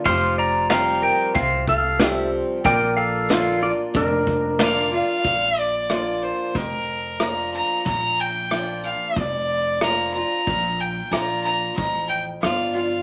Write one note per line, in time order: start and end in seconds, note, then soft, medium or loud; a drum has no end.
0.05 1.09 F1 medium
0.05 0.68 F3 medium
0.05 2.61 F4 medium
0.05 2.62 G4 medium
0.05 2.62 C5 medium
0.05 0.36 F5 medium
0.05 0.39 C6 loud
0.05 kick loud
0.05 open hi-hat medium
0.38 0.68 D5 medium
0.38 0.69 A#5 loud
0.69 1.31 F3 medium
0.69 1.32 G3 medium
0.69 1.32 C4 medium
0.69 1.32 G4 loud
0.69 1.01 F5 medium
0.69 1.04 A#5 medium
0.69 snare loud
0.69 open hi-hat medium
1.02 1.33 A#4 medium
1.02 1.33 G5 medium
1.35 2.39 C2 medium
1.35 2.58 C3 medium
1.35 1.65 C5 medium
1.35 1.67 F5 medium
1.35 kick loud
1.35 open hi-hat medium
1.67 2.29 A4 medium
1.67 2.12 F5 medium
1.67 kick medium
1.99 2.61 F3 medium
1.99 2.62 G3 medium
1.99 2.62 C4 medium
1.99 2.62 G4 medium
1.99 snare loud
2.12 2.29 E5 medium
2.64 3.69 A#1 medium
2.64 3.88 A#2 medium
2.64 4.56 A#3 medium
2.64 4.56 F4 medium
2.64 2.96 A#4 medium
2.64 4.56 D5 medium
2.64 2.96 G5 loud
2.64 kick loud
2.64 open hi-hat soft
2.97 3.58 A4 medium
2.97 3.58 F5 loud
3.29 3.60 D3 medium
3.29 3.61 A#3 loud
3.29 3.61 D4 medium
3.29 3.60 F4 loud
3.29 snare loud
3.61 3.94 D4 medium
3.61 3.93 F4 medium
3.61 3.72 F4 medium
3.61 3.71 D5 medium
3.94 4.99 F1 medium
3.94 5.18 F2 medium
3.94 4.89 D4 medium
3.94 4.89 A#4 medium
3.94 kick loud
3.94 open hi-hat medium
4.27 kick medium
4.59 4.91 D3 medium
4.59 4.91 A#3 medium
4.59 4.92 D4 loud
4.59 5.25 F4 soft
4.59 4.91 F4 loud
4.59 5.25 A#4 soft
4.59 5.25 D5 medium
4.59 4.91 F5 loud
4.59 snare loud
4.59 open hi-hat medium
4.92 5.24 D4 medium
4.92 5.24 F4 medium
4.92 5.60 F5 loud
5.24 6.29 A#1 medium
5.24 6.49 A#2 medium
5.24 kick loud
5.24 closed hi-hat medium
5.59 6.24 D5 medium
5.90 6.52 F3 medium
5.90 6.52 A#3 medium
5.90 6.52 D4 medium
5.90 6.53 F4 medium
5.90 cross-stick loud
5.90 closed hi-hat medium
6.23 6.57 C5 medium
6.23 closed hi-hat medium
6.55 7.59 F1 medium
6.55 7.79 F2 medium
6.55 7.23 A#4 medium
6.55 kick medium
6.55 closed hi-hat soft
7.20 7.82 F3 medium
7.20 7.83 A#3 soft
7.20 7.83 D4 medium
7.20 7.83 F4 medium
7.20 7.54 A#5 medium
7.20 cross-stick loud
7.20 closed hi-hat medium
7.53 7.84 A#5 medium
7.53 closed hi-hat medium
7.85 8.90 A#1 medium
7.85 9.09 A#2 medium
7.85 8.22 A#5 loud
7.85 kick medium
7.85 closed hi-hat medium
8.20 8.85 G5 medium
8.51 9.13 F3 medium
8.51 9.13 A#3 medium
8.51 9.13 D4 medium
8.51 9.14 F4 medium
8.51 cross-stick medium
8.51 closed hi-hat medium
8.83 9.20 F5 medium
8.83 closed hi-hat medium
9.16 10.21 F1 medium
9.16 10.41 F2 medium
9.16 9.82 D5 medium
9.16 kick loud
9.16 closed hi-hat medium
9.81 10.13 F3 medium
9.81 10.13 A#3 medium
9.81 10.14 D4 medium
9.81 10.14 F4 medium
9.81 10.12 A#5 medium
9.81 cross-stick loud
9.81 closed hi-hat medium
10.13 10.47 D4 soft
10.13 10.46 F4 soft
10.13 10.81 A#5 loud
10.13 closed hi-hat medium
10.47 10.99 A#1 medium
10.47 11.71 A#2 medium
10.47 kick loud
10.47 closed hi-hat medium
10.80 11.13 G5 medium
11.11 11.67 A#1 medium
11.11 11.73 F3 medium
11.11 11.74 A#3 medium
11.11 11.74 D4 medium
11.11 11.75 F4 medium
11.11 11.43 A#5 medium
11.11 cross-stick medium
11.11 closed hi-hat medium
11.43 11.74 A#5 medium
11.43 closed hi-hat medium
11.76 12.33 A1 medium
11.76 13.01 F2 medium
11.76 12.07 A#5 medium
11.76 kick medium
11.76 closed hi-hat medium
12.09 12.24 G5 medium
12.41 12.98 G1 medium
12.41 12.73 F3 soft
12.41 12.74 A#3 medium
12.41 12.74 D4 medium
12.41 12.73 F4 medium
12.41 12.72 F5 medium
12.41 cross-stick loud
12.41 closed hi-hat medium
12.75 13.02 D4 soft
12.75 13.02 F4 soft
12.75 13.02 F5 medium
12.75 closed hi-hat medium